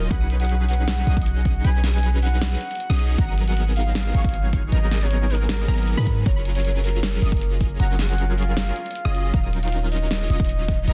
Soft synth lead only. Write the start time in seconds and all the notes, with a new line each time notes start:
0.11 F#5
0.40 F#5
0.68 F#5
1.65 G#5
1.94 G#5
2.22 F#5
3.18 F#5
3.47 F#5
3.76 F5
4.72 D#5
5.02 C#5
5.30 A#4
6.26 C#5
6.55 C#5
6.84 A#4
7.80 F#5
8.09 F#5
8.37 F5
9.34 F5
9.63 F5
9.91 D#5
10.88 D#5